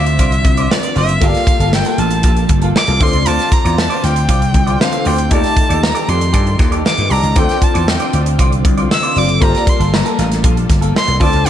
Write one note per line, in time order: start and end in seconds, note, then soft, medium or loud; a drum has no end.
0.00 0.19 D2 medium
0.00 1.20 D3 medium
0.00 1.17 C4 medium
0.00 1.20 C4 medium
0.00 1.17 D4 medium
0.00 1.17 F4 medium
0.00 2.97 F4 medium
0.00 1.18 A4 medium
0.00 1.18 D5 medium
0.00 0.73 E5 medium
0.06 muted clean electric guitar stroke medium
0.06 closed hi-hat medium
0.19 0.41 C2 loud
0.19 0.33 F4 medium
0.19 0.32 C5 medium
0.19 0.31 D5 medium
0.19 kick medium
0.19 closed hi-hat medium
0.32 muted clean electric guitar stroke soft
0.32 closed hi-hat soft
0.45 0.66 C2 loud
0.45 muted clean electric guitar stroke soft
0.45 kick medium
0.45 closed hi-hat medium
0.57 0.69 F4 medium
0.57 0.69 C5 medium
0.57 0.69 D5 medium
0.57 closed hi-hat soft
0.70 0.99 D5 medium
0.70 muted clean electric guitar stroke soft
0.70 snare loud
0.83 muted clean electric guitar stroke medium
0.83 closed hi-hat medium
0.96 1.17 F#1 medium
0.96 1.10 F4 medium
0.96 1.09 C5 medium
0.96 1.08 D5 medium
0.96 1.25 E5 loud
0.96 open hi-hat medium
1.09 muted clean electric guitar stroke soft
1.09 closed hi-hat medium
1.21 1.32 G1 loud
1.21 2.99 G3 medium
1.21 2.97 A#3 medium
1.21 2.99 A#3 medium
1.21 1.45 A#3 medium
1.21 2.97 F4 medium
1.21 1.46 F4 loud
1.21 2.97 G4 medium
1.21 2.99 A4 medium
1.21 2.98 A4 medium
1.21 1.46 A4 loud
1.21 2.98 D5 medium
1.21 1.76 F5 loud
1.21 kick loud
1.21 closed hi-hat medium
1.35 snare soft
1.35 closed hi-hat soft
1.47 muted clean electric guitar stroke soft
1.47 kick loud
1.47 closed hi-hat medium
1.60 1.81 G1 medium
1.60 1.72 A#3 medium
1.60 1.72 F4 soft
1.60 1.71 A4 medium
1.60 closed hi-hat medium
1.73 2.01 G5 medium
1.73 snare loud
1.85 1.97 A#3 medium
1.85 1.99 F4 medium
1.85 2.00 A4 medium
1.85 closed hi-hat medium
1.98 2.24 A1 loud
1.98 2.10 A#3 medium
1.98 2.10 F4 medium
1.98 2.11 A4 medium
1.98 2.50 A5 medium
1.98 closed hi-hat medium
2.11 muted clean electric guitar stroke soft
2.11 closed hi-hat medium
2.23 2.45 A#1 loud
2.23 2.38 A#3 medium
2.23 2.37 F4 medium
2.23 2.36 A4 medium
2.23 kick loud
2.23 closed hi-hat medium
2.37 muted clean electric guitar stroke soft
2.37 closed hi-hat soft
2.49 2.71 G1 medium
2.49 muted clean electric guitar stroke soft
2.49 kick medium
2.49 closed hi-hat medium
2.62 2.74 A#3 medium
2.62 2.74 F4 medium
2.62 2.73 A4 medium
2.62 closed hi-hat soft
2.75 3.04 D6 loud
2.75 muted clean electric guitar stroke medium
2.75 snare loud
2.87 3.01 C2 medium
2.87 3.00 A#3 medium
2.87 3.00 F4 medium
2.87 2.99 A4 medium
2.87 closed hi-hat soft
2.99 3.11 D2 medium
2.99 5.29 D3 medium
2.99 4.76 C4 medium
2.99 5.29 C4 medium
2.99 4.76 D4 medium
2.99 5.29 F4 medium
2.99 4.76 F4 medium
2.99 3.15 F4 medium
2.99 4.77 A4 medium
2.99 3.14 C5 loud
2.99 4.77 D5 medium
2.99 3.13 D5 loud
2.99 3.30 C6 loud
2.99 kick loud
2.99 open hi-hat medium
3.13 3.24 C#2 medium
3.13 muted clean electric guitar stroke soft
3.13 closed hi-hat medium
3.26 3.37 D2 medium
3.26 3.50 F4 loud
3.26 3.50 C5 loud
3.26 3.51 D5 loud
3.26 3.55 A5 loud
3.26 closed hi-hat medium
3.39 snare soft
3.39 closed hi-hat soft
3.52 3.80 A#5 loud
3.52 muted clean electric guitar stroke soft
3.52 kick loud
3.52 closed hi-hat medium
3.65 3.86 E2 medium
3.65 3.76 F4 medium
3.65 3.76 C5 medium
3.65 3.76 D5 medium
3.65 closed hi-hat medium
3.77 4.06 A5 loud
3.77 muted clean electric guitar stroke soft
3.77 snare loud
3.90 4.02 F4 medium
3.90 4.03 C5 medium
3.90 4.03 D5 medium
3.90 closed hi-hat medium
4.03 4.29 D2 medium
4.03 4.14 F4 medium
4.03 4.15 C5 medium
4.03 4.15 D5 medium
4.03 4.83 G5 loud
4.03 snare soft
4.03 closed hi-hat medium
4.16 muted clean electric guitar stroke soft
4.16 closed hi-hat medium
4.29 4.50 C2 loud
4.29 4.43 F4 medium
4.29 4.42 C5 medium
4.29 4.40 D5 loud
4.29 kick medium
4.29 closed hi-hat medium
4.41 muted clean electric guitar stroke soft
4.41 closed hi-hat soft
4.54 4.76 C2 loud
4.54 muted clean electric guitar stroke soft
4.54 kick medium
4.54 closed hi-hat medium
4.67 4.79 F4 medium
4.67 4.78 C5 medium
4.67 4.78 D5 medium
4.67 closed hi-hat soft
4.80 5.31 C4 soft
4.80 5.31 D4 soft
4.80 5.30 F4 soft
4.80 5.32 A4 soft
4.80 5.32 C5 medium
4.80 5.09 F5 medium
4.80 snare loud
4.93 muted clean electric guitar stroke soft
4.93 closed hi-hat medium
5.05 5.27 D2 medium
5.05 5.19 F4 medium
5.05 5.19 C5 medium
5.05 5.17 D5 medium
5.05 5.34 G5 loud
5.05 open hi-hat medium
5.18 muted clean electric guitar stroke soft
5.18 closed hi-hat medium
5.30 5.42 D#2 medium
5.30 7.34 D#3 medium
5.30 7.32 A3 medium
5.30 7.32 D#4 medium
5.30 7.32 F4 medium
5.30 11.50 F4 medium
5.30 5.55 G4 medium
5.30 7.34 G4 medium
5.30 7.32 G4 medium
5.30 7.34 A4 medium
5.30 5.55 A4 loud
5.30 7.34 D5 medium
5.30 7.33 D5 medium
5.30 5.56 D5 medium
5.30 5.85 A5 loud
5.30 kick loud
5.30 closed hi-hat medium
5.44 snare soft
5.44 closed hi-hat soft
5.56 muted clean electric guitar stroke soft
5.56 kick loud
5.56 closed hi-hat medium
5.69 5.91 D#2 medium
5.69 5.81 G4 soft
5.69 5.81 A4 medium
5.69 5.80 D5 medium
5.69 closed hi-hat medium
5.82 6.11 A#5 loud
5.82 muted clean electric guitar stroke soft
5.82 snare loud
5.95 6.06 G4 medium
5.95 6.07 A4 medium
5.95 6.08 D5 medium
5.95 closed hi-hat medium
6.07 6.34 F2 medium
6.07 6.19 G4 medium
6.07 6.19 A4 medium
6.07 6.19 D5 medium
6.07 6.60 C6 medium
6.07 closed hi-hat medium
6.21 muted clean electric guitar stroke medium
6.21 closed hi-hat medium
6.33 6.55 G2 medium
6.33 6.47 G4 medium
6.33 6.46 A4 medium
6.33 6.45 D5 loud
6.33 kick medium
6.33 closed hi-hat medium
6.46 muted clean electric guitar stroke soft
6.46 closed hi-hat soft
6.59 6.81 D#2 loud
6.59 muted clean electric guitar stroke soft
6.59 kick medium
6.59 snare soft
6.59 closed hi-hat medium
6.72 6.83 G4 medium
6.72 6.83 A4 medium
6.72 6.83 D5 medium
6.72 closed hi-hat soft
6.86 7.14 D6 loud
6.86 snare loud
6.97 7.09 G2 medium
6.97 muted clean electric guitar stroke medium
6.97 closed hi-hat medium
7.10 7.21 C2 medium
7.10 7.24 G4 medium
7.10 7.23 A4 loud
7.10 7.22 D5 loud
7.10 7.40 A#5 loud
7.10 open hi-hat medium
7.23 7.34 C#2 medium
7.23 muted clean electric guitar stroke medium
7.23 closed hi-hat soft
7.35 7.47 D2 medium
7.35 9.39 D3 medium
7.35 9.12 C4 medium
7.35 9.39 C4 medium
7.35 9.12 D4 medium
7.35 7.59 F4 medium
7.35 9.12 F4 medium
7.35 9.13 A4 medium
7.35 7.60 C5 medium
7.35 7.60 D5 loud
7.35 9.13 D5 medium
7.35 7.65 G5 loud
7.35 kick loud
7.35 closed hi-hat medium
7.49 snare soft
7.49 closed hi-hat soft
7.62 7.91 A5 medium
7.62 muted clean electric guitar stroke soft
7.62 kick medium
7.62 closed hi-hat medium
7.74 7.96 E2 medium
7.74 7.86 F4 medium
7.74 7.86 C5 medium
7.74 7.85 D5 medium
7.74 closed hi-hat medium
7.88 8.14 G5 medium
7.88 muted clean electric guitar stroke soft
7.88 snare loud
8.00 8.12 F4 medium
8.00 8.13 C5 medium
8.00 8.14 D5 medium
8.00 closed hi-hat medium
8.13 8.39 D2 medium
8.13 8.24 F4 medium
8.13 8.25 C5 medium
8.13 8.25 D5 medium
8.13 closed hi-hat medium
8.26 muted clean electric guitar stroke medium
8.26 closed hi-hat medium
8.39 8.60 C2 loud
8.39 8.53 F4 loud
8.39 8.52 C5 medium
8.39 8.51 D5 medium
8.39 kick medium
8.39 closed hi-hat medium
8.52 muted clean electric guitar stroke soft
8.52 closed hi-hat soft
8.65 8.86 C2 loud
8.65 muted clean electric guitar stroke soft
8.65 kick loud
8.65 closed hi-hat medium
8.78 8.89 F4 medium
8.78 8.89 C5 medium
8.78 8.88 D5 medium
8.78 closed hi-hat soft
8.90 9.20 E6 loud
8.90 muted clean electric guitar stroke medium
8.90 snare loud
9.03 9.14 F4 medium
9.03 9.15 C5 medium
9.03 9.16 D5 medium
9.03 closed hi-hat medium
9.16 9.37 F#1 medium
9.16 9.41 C4 soft
9.16 9.42 D4 soft
9.16 9.27 F4 medium
9.16 9.40 F4 soft
9.16 9.41 A4 soft
9.16 9.27 C5 medium
9.16 9.42 D5 medium
9.16 9.27 D5 medium
9.16 9.45 D6 loud
9.16 open hi-hat medium
9.28 muted clean electric guitar stroke soft
9.28 closed hi-hat medium
9.41 9.52 G1 medium
9.41 11.19 G3 medium
9.41 11.17 A#3 medium
9.41 9.65 A#3 loud
9.41 11.19 A#3 medium
9.41 11.17 F4 medium
9.41 9.65 F4 medium
9.41 11.18 G4 medium
9.41 11.19 A4 medium
9.41 11.18 A4 medium
9.41 9.66 A4 loud
9.41 9.48 C5 medium
9.41 9.71 A#5 loud
9.41 kick loud
9.41 closed hi-hat medium
9.49 11.21 D5 medium
9.55 snare soft
9.55 closed hi-hat soft
9.67 9.96 C6 medium
9.67 muted clean electric guitar stroke soft
9.67 kick loud
9.67 closed hi-hat medium
9.79 10.01 G1 medium
9.79 9.92 A#3 soft
9.79 9.91 F4 medium
9.79 9.91 A4 medium
9.79 closed hi-hat medium
9.93 10.19 A#5 medium
9.93 muted clean electric guitar stroke soft
9.93 snare loud
10.05 10.17 A#3 medium
10.05 10.18 F4 medium
10.05 10.18 A4 medium
10.05 closed hi-hat soft
10.18 10.44 A1 medium
10.18 10.29 A#3 medium
10.18 10.29 F4 medium
10.18 10.30 A4 medium
10.18 snare soft
10.18 closed hi-hat medium
10.31 muted clean electric guitar stroke soft
10.31 snare soft
10.31 closed hi-hat medium
10.43 10.65 A#1 loud
10.43 10.58 A#3 medium
10.43 10.57 F4 medium
10.43 10.55 A4 medium
10.43 kick loud
10.43 closed hi-hat loud
10.56 muted clean electric guitar stroke soft
10.56 closed hi-hat soft
10.69 10.91 G1 loud
10.69 muted clean electric guitar stroke soft
10.69 kick medium
10.69 snare soft
10.69 closed hi-hat medium
10.81 10.93 A#3 medium
10.81 10.94 F4 medium
10.81 10.93 A4 medium
10.81 closed hi-hat soft
10.95 11.20 C6 loud
10.95 muted clean electric guitar stroke medium
10.95 snare loud
11.08 11.21 C2 medium
11.08 muted clean electric guitar stroke medium
11.08 closed hi-hat medium
11.20 11.31 D2 loud
11.20 11.50 D3 medium
11.20 11.50 C4 medium
11.20 11.50 D4 medium
11.20 11.35 F4 medium
11.20 11.50 F4 medium
11.20 11.50 A4 medium
11.20 11.33 C5 medium
11.20 11.32 D5 loud
11.20 11.50 D5 medium
11.20 11.49 A5 loud
11.20 kick loud
11.20 open hi-hat medium
11.33 11.44 C#2 medium
11.33 muted clean electric guitar stroke soft
11.33 closed hi-hat medium
11.46 11.50 D2 medium
11.46 11.50 F4 medium
11.46 11.50 C5 loud
11.46 closed hi-hat medium